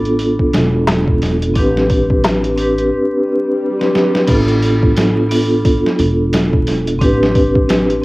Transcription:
Already playing: upright bass A1, vibraphone B3 D4 F4 A4
0.05 closed hi-hat
0.19 open hi-hat
0.39 kick
0.53 upright bass E1, snare, open hi-hat
0.87 snare, open hi-hat, darbuka tek
1.08 kick
1.22 snare, open hi-hat
1.42 closed hi-hat
1.54 upright bass A1, vibraphone C4 D4 G4, kick, open hi-hat
1.59 vibraphone B4
1.77 snare
1.90 kick, open hi-hat
2.10 kick
2.24 snare, open hi-hat, darbuka tek
2.44 closed hi-hat
2.56 vibraphone C4 D4 G4, open hi-hat
2.61 vibraphone B4
2.78 closed hi-hat
2.92 swell
3.80 vibraphone C4 D4 G4 B4, snare
3.95 snare
4.15 snare
4.27 upright bass A1, vibraphone B3 D4 F4, kick, open hi-hat, crash
4.32 vibraphone A4
4.48 closed hi-hat
4.62 open hi-hat
4.83 kick
4.96 snare, open hi-hat
5.29 vibraphone B3 D4 F4, open hi-hat
5.34 vibraphone A4
5.65 kick, open hi-hat
5.86 snare
5.99 upright bass E1, open hi-hat
6.33 snare, open hi-hat
6.53 kick
6.67 snare, open hi-hat
6.87 closed hi-hat
6.99 upright bass A1, vibraphone C4 D4 G4, kick, open hi-hat
7.04 vibraphone B4
7.23 snare
7.35 kick, open hi-hat
7.55 kick
7.69 snare, open hi-hat
7.90 closed hi-hat
8.02 vibraphone C4

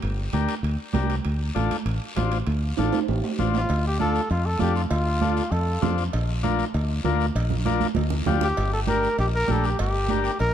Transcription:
0.02 fingered electric bass G1, high timbale, long guiro
0.33 fingered electric bass D2, transistor combo organ D4 G4 A#4, high conga, high timbale, short guiro
0.49 high timbale, short guiro
0.63 fingered electric bass D2, high timbale, long guiro
0.93 fingered electric bass C2, transistor combo organ D4 G4 A#4, high conga, high timbale, low timbale, short guiro
1.10 high timbale, short guiro
1.25 fingered electric bass D2, high timbale, long guiro
1.55 fingered electric bass A1, transistor combo organ D4 F4 A4, high conga, high timbale, short guiro
1.71 high conga, high timbale, short guiro
1.85 fingered electric bass A1, high timbale, long guiro
2.16 fingered electric bass A1, transistor combo organ D4 F4 C5, high conga, high timbale, low timbale, short guiro
2.32 high timbale, short guiro
2.47 fingered electric bass D2, high timbale, long guiro
2.77 fingered electric bass A1, transistor combo organ D4 F4 A4, high conga, high timbale, short guiro
2.93 high conga, high timbale, short guiro
3.08 fingered electric bass A1, low timbale, long guiro
3.24 low timbale
3.39 fingered electric bass A1, transistor combo organ D4 F4 C5, high conga, short guiro
3.54 trumpet F4, low timbale, short guiro
3.69 fingered electric bass D2, cowbell, long guiro
3.87 trumpet G4
3.99 transistor combo organ D4 F4 A4, trumpet A4, high conga, short guiro
4.15 short guiro
4.30 fingered electric bass F2, trumpet F4, cowbell, long guiro
4.46 trumpet A4
4.59 fingered electric bass F2, transistor combo organ D4 F4 A4, trumpet G4, high conga, short guiro
4.76 trumpet F4, short guiro
4.90 fingered electric bass D2, trumpet F4, cowbell, long guiro
5.21 transistor combo organ D4 F4 A4, high conga, short guiro
5.37 short guiro
5.51 fingered electric bass F2, trumpet A4, cowbell, long guiro
5.82 fingered electric bass F2, transistor combo organ D4 F4 C5, high conga, low conga, short guiro
5.98 short guiro
6.13 fingered electric bass A#1, cowbell, long guiro
6.43 transistor combo organ D4 F4 A#4, high conga, short guiro
6.59 short guiro
6.74 fingered electric bass D2, cowbell, long guiro
7.05 fingered electric bass D2, transistor combo organ D4 F4 A#4, high conga, short guiro
7.20 short guiro
7.35 fingered electric bass A#1, cowbell, long guiro
7.50 low conga
7.66 transistor combo organ D4 F4 A#4, high conga, short guiro
7.81 high conga, short guiro
7.95 fingered electric bass D2, cowbell, high conga, long guiro
8.10 low conga
8.26 fingered electric bass D2, transistor combo organ D4 F4 G4, low conga, low timbale, short guiro
8.41 trumpet G4, low conga, short guiro
8.57 fingered electric bass G1, cowbell, long guiro
8.73 trumpet A4
8.87 transistor combo organ D4 G4 A#4, trumpet A#4, high conga, short guiro
9.03 short guiro
9.18 fingered electric bass A#1, trumpet G4, cowbell, long guiro
9.35 trumpet A#4
9.47 fingered electric bass A#1, transistor combo organ D4 G4 A#4, high conga, short guiro
9.51 trumpet A4
9.64 trumpet G4, short guiro
9.79 fingered electric bass G1, trumpet G4, cowbell, long guiro
10.09 transistor combo organ D4 G4 A#4, high conga, short guiro
10.24 short guiro
10.39 fingered electric bass A#1, trumpet A#4, cowbell, long guiro

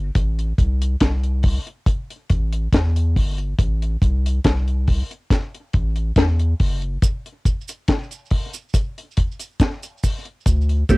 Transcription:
Already playing: sub bass G1
0.15 sub bass A1, kick, closed hi-hat
0.39 closed hi-hat
0.58 sub bass C2, kick, closed hi-hat
0.82 closed hi-hat
1.00 sub bass C2, kick, snare, closed hi-hat
1.24 closed hi-hat
1.43 kick, open hi-hat
1.67 closed hi-hat
1.86 kick, closed hi-hat
2.11 closed hi-hat
2.30 sub bass A1, kick, closed hi-hat
2.53 closed hi-hat
2.73 sub bass E2, kick, snare, closed hi-hat
2.96 closed hi-hat
3.16 sub bass G1, kick, open hi-hat
3.38 closed hi-hat
3.59 sub bass A1, kick, closed hi-hat
3.82 closed hi-hat
4.02 sub bass C2, kick, closed hi-hat
4.26 closed hi-hat
4.44 sub bass C2, kick, snare, closed hi-hat
4.68 closed hi-hat
4.88 kick, open hi-hat
5.11 closed hi-hat
5.30 kick, snare, closed hi-hat
5.54 closed hi-hat
5.73 sub bass A1, kick, closed hi-hat
5.96 closed hi-hat
6.16 sub bass E2, kick, snare, closed hi-hat
6.39 closed hi-hat
6.60 sub bass F#1, kick, open hi-hat
6.82 closed hi-hat
7.02 kick, closed hi-hat, cabasa
7.26 closed hi-hat
7.45 kick, closed hi-hat, cabasa
7.68 closed hi-hat, cabasa
7.88 kick, snare, closed hi-hat
8.11 closed hi-hat, cabasa
8.31 kick, open hi-hat
8.54 closed hi-hat, cabasa
8.74 kick, closed hi-hat, cabasa
8.98 closed hi-hat
9.17 kick, closed hi-hat
9.40 closed hi-hat, cabasa
9.60 kick, snare, closed hi-hat, cabasa
9.83 closed hi-hat, cabasa
10.04 kick, open hi-hat, cabasa
10.26 closed hi-hat
10.46 sub bass D2, kick, closed hi-hat, cabasa
10.69 closed hi-hat
10.89 sub bass E2, clean electric guitar A3 C4 G4, kick, closed hi-hat, cabasa

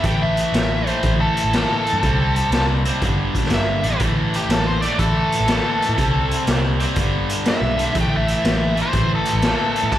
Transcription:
0.03 picked electric bass A1, overdriven electric guitar A2 E3, lead electric guitar G5, kick, closed hi-hat
0.07 overdriven electric guitar A3
0.22 lead electric guitar E5
0.37 closed hi-hat
0.52 picked electric bass A1, snare, closed hi-hat
0.86 overdriven electric guitar A2 E3 A3, lead electric guitar C5, closed hi-hat
1.03 picked electric bass A1, kick, closed hi-hat
1.21 lead electric guitar A4
1.37 closed hi-hat
1.44 picked electric bass A1
1.51 overdriven electric guitar A2 E3, snare, closed hi-hat
1.55 overdriven electric guitar A3
1.86 closed hi-hat
1.93 picked electric bass G2
2.01 picked electric bass C2, overdriven electric guitar C3 G3, kick, closed hi-hat
2.06 overdriven electric guitar C4
2.36 closed hi-hat
2.51 picked electric bass C2, snare, closed hi-hat
2.85 overdriven electric guitar C3 G3 C4, closed hi-hat
3.02 picked electric bass G1, overdriven electric guitar G2 D3 G3, kick, closed hi-hat
3.35 kick, closed hi-hat
3.44 snare
3.50 picked electric bass G1, snare, closed hi-hat
3.54 lead electric guitar E5
3.83 picked electric bass A1, overdriven electric guitar D3 G3, closed hi-hat
3.87 overdriven electric guitar G2
3.99 picked electric bass A1, overdriven electric guitar A2 E3 A3, kick, closed hi-hat
4.33 lead electric guitar G4, closed hi-hat
4.49 picked electric bass A1, lead electric guitar A4, snare, closed hi-hat
4.67 lead electric guitar C5
4.81 overdriven electric guitar E3 A3, lead electric guitar D5, closed hi-hat
4.87 overdriven electric guitar A2
4.99 picked electric bass A1, lead electric guitar A4, kick, closed hi-hat
5.32 closed hi-hat
5.40 picked electric bass A1
5.47 overdriven electric guitar A2 E3 A3, snare, closed hi-hat
5.82 closed hi-hat
5.89 picked electric bass A2
5.96 picked electric bass C2, overdriven electric guitar C3 G3, kick, closed hi-hat
6.00 overdriven electric guitar C4
6.31 closed hi-hat
6.47 picked electric bass C2, snare, closed hi-hat
6.80 overdriven electric guitar C3 G3 C4, closed hi-hat
6.94 picked electric bass G1, overdriven electric guitar G2 D3 G3, kick, closed hi-hat
7.29 closed hi-hat
7.45 lead electric guitar E5, snare, closed hi-hat
7.62 picked electric bass B1
7.77 overdriven electric guitar G2 D3 G3, closed hi-hat
7.93 picked electric bass A1, overdriven electric guitar A2 E3, kick, closed hi-hat
7.98 overdriven electric guitar A3, lead electric guitar G5
8.17 lead electric guitar E5
8.28 closed hi-hat
8.44 picked electric bass A1, snare, closed hi-hat
8.75 overdriven electric guitar E3 A3, closed hi-hat
8.80 overdriven electric guitar A2, lead electric guitar C5
8.93 picked electric bass A1, kick, closed hi-hat
9.15 lead electric guitar A4
9.25 closed hi-hat
9.33 picked electric bass A1
9.41 overdriven electric guitar A2 E3 A3, snare, closed hi-hat
9.76 closed hi-hat
9.83 picked electric bass A2
9.92 lead electric guitar A5, kick, crash

